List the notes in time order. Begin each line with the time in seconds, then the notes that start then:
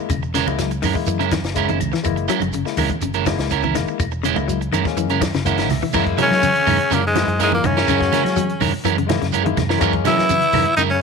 Already playing: G#3 A#3 E4
0.09 E1 C#3, kick, closed hi-hat, claves, shekere
0.23 muted clean electric guitar stroke, shekere
0.34 C#3 G#3 C#4 E4 A#4, snare, closed hi-hat, shekere
0.46 C#2 G#3 A#3 E4, muted clean electric guitar stroke, high conga, claves, shekere
0.58 F#3, snare, closed hi-hat, shekere
0.71 muted clean electric guitar stroke, closed hi-hat, shekere
0.82 F#2 D#3 G#3 C#4 E4 A#4, kick, open hi-hat, high conga, claves, shekere
0.94 G#3 A#3 E4, muted clean electric guitar stroke, kick, shekere
1.07 F#2 E3, muted clean electric guitar stroke, closed hi-hat, shekere
1.19 C#3 G#3 C#4 E4 A#4, closed hi-hat, shekere
1.31 D#3, muted clean electric guitar stroke, kick, snare, closed hi-hat, high conga, claves, shekere
1.43 F#1, snare, closed hi-hat, shekere
1.55 G#3 A#3 C#4 E4 A#4, kick, closed hi-hat, shekere
1.68 D#3 C#4 E4, closed hi-hat, high conga, shekere
1.80 C#2, muted clean electric guitar stroke, closed hi-hat, high conga, claves, shekere
1.92 E3, muted clean electric guitar stroke, snare, shekere
2.03 F#1 E3 G#3 A#3 E4, kick, closed hi-hat, claves, shekere
2.16 muted clean electric guitar stroke, closed hi-hat, shekere
2.28 F#3 G#3 C#4 E4 A#4, closed hi-hat, shekere
2.40 F#1, muted clean electric guitar stroke, closed hi-hat, high conga, claves, shekere
2.52 C#3, closed hi-hat, shekere
2.65 G#3 A#3 E4, muted clean electric guitar stroke, snare, shekere
2.77 C#2 D#3 G#3 C#4 E4 A#4, kick, open hi-hat, high conga, claves, shekere
2.89 muted clean electric guitar stroke, kick, closed hi-hat, shekere
3.01 F#1 C#3, muted clean electric guitar stroke, closed hi-hat, high conga, shekere
3.13 G#3 C#4 E4 A#4, closed hi-hat, shekere
3.26 G#3 A#3 E4, muted clean electric guitar stroke, kick, snare, closed hi-hat, high conga, claves, shekere
3.38 C#2, snare, closed hi-hat, shekere
3.49 C#4 E4 A#4, muted clean electric guitar stroke, kick, closed hi-hat, shekere
3.62 E3 C#4 E4 A#4, high conga, shekere
3.75 F#1 D#3 G#3 A#3 E4, muted clean electric guitar stroke, snare, closed hi-hat, claves, shekere
3.88 muted clean electric guitar stroke, shekere
4.00 E1, muted clean electric guitar stroke, kick, closed hi-hat, claves, shekere
4.11 muted clean electric guitar stroke, shekere
4.23 C#3 G#3 C#4 E4, closed hi-hat, shekere
4.35 C#2 G#3 A#3 E4, muted clean electric guitar stroke, high conga, claves, shekere
4.48 F#3, closed hi-hat, shekere
4.61 muted clean electric guitar stroke, closed hi-hat, shekere
4.71 F#2 D#3 G#3 C#4 E4 A#4, closed hi-hat, high conga, claves, shekere
4.85 G#3 A#3 C#4, muted clean electric guitar stroke, kick, snare, shekere
4.97 F#2 E3, muted clean electric guitar stroke, closed hi-hat, shekere
5.09 C#3 G#3 C#4 E4 A#4, closed hi-hat, shekere
5.21 D#3, muted clean electric guitar stroke, kick, snare, closed hi-hat, high conga, claves, shekere
5.33 F#1 C#3, snare, closed hi-hat, shekere
5.45 G#3 A#3 C#4 E4 A#4 F#5, kick, closed hi-hat, high conga, shekere
5.57 D#3 C#4 E4 A#4, snare, closed hi-hat, shekere
5.69 C#2 E5, muted clean electric guitar stroke, snare, open hi-hat, low conga, claves, shekere
5.82 E3, muted clean electric guitar stroke, low conga, shekere
5.93 F#2 E3 G#3 A#3 C#4 E4 A#4, kick, crash, claves, shekere
6.06 muted clean electric guitar stroke, kick, closed hi-hat
6.17 C#3 F#3 G#3 C#4 E4 A#4, closed hi-hat, high conga, low conga, shekere
6.22 C#4
6.30 F#3, muted clean electric guitar stroke, snare, claves
6.42 C#3, muted clean electric guitar stroke, closed hi-hat, high conga, shekere
6.55 closed hi-hat
6.66 F#2 D#3 G#3 C#4 E4 A#4, kick, open hi-hat, low conga, claves, shekere
6.79 muted clean electric guitar stroke, closed hi-hat
6.90 F#2 A#2 C#3 G#3 A#3 C#4 E4 A#4, closed hi-hat, shekere
7.03 G#2, muted clean electric guitar stroke
7.07 G#3
7.14 F#3 G#3 A#3 E4, muted clean electric guitar stroke, snare, closed hi-hat, high conga, claves, shekere
7.27 F#2, muted clean electric guitar stroke, closed hi-hat
7.38 G#3 A#3 C#4 E4 A#4, closed hi-hat, shekere
7.43 G#2 G#3
7.52 A#2 E3 A#3, muted clean electric guitar stroke, high conga
7.62 F#2 C#3 D#3 G#3 A#3 C#4 E4, muted clean electric guitar stroke, kick, closed hi-hat, low conga, claves, shekere
7.67 C#4
7.77 C#4 E4 A#4, snare, closed hi-hat
7.87 F#2 C#3 G#3 C#4 E4 A#4, kick, closed hi-hat, claves, shekere
7.97 G#3 A#3 F#4, muted clean electric guitar stroke, kick
8.02 snare
8.12 C#3 G#3 C#4 E4 A#4, snare, closed hi-hat, high conga, shekere
8.24 F#3, muted clean electric guitar stroke, snare, closed hi-hat, claves
8.36 F#3, muted clean electric guitar stroke, closed hi-hat, high conga, shekere
8.49 closed hi-hat
8.60 F#2 D#3 G#3 C#4 E4 A#4, kick, open hi-hat, low conga, claves, shekere
8.73 muted clean electric guitar stroke
8.85 F#2 E3 G#3 C#4 E4 A#4, closed hi-hat, high conga, shekere
8.97 C#3, muted clean electric guitar stroke, closed hi-hat
9.07 D#3 G#3 A#3 E4, muted clean electric guitar stroke, snare, closed hi-hat, high conga, low conga, claves, shekere
9.22 F#2 C#3, snare, closed hi-hat
9.32 G#3 C#4 E4 A#4, closed hi-hat, shekere
9.44 D#3 G#3 A#3 E4, muted clean electric guitar stroke, closed hi-hat, high conga
9.57 F#2, muted clean electric guitar stroke, kick, snare, closed hi-hat, high conga, low conga, claves, shekere
9.69 E3 C#4 E4 A#4, snare
9.78 F#2 G#3 A#3 C#4 E4 A#4, kick, closed hi-hat, claves, shekere
9.82 E3
9.93 muted clean electric guitar stroke, kick, closed hi-hat
10.04 E3 F#3 G#3 C#4 E4 A#4, snare, closed hi-hat, high conga, low conga, shekere
10.17 F#3, muted clean electric guitar stroke, snare, claves
10.29 C#3, muted clean electric guitar stroke, closed hi-hat, high conga, shekere
10.41 closed hi-hat
10.53 F#2 D#3 G#3 C#4 E4 A#4, kick, open hi-hat, low conga, claves, shekere
10.65 muted clean electric guitar stroke, closed hi-hat
10.77 F#2 C#3 D#3 G#3 D#4 E4 A#4, muted clean electric guitar stroke, closed hi-hat, shekere
10.90 C#3 C#4, muted clean electric guitar stroke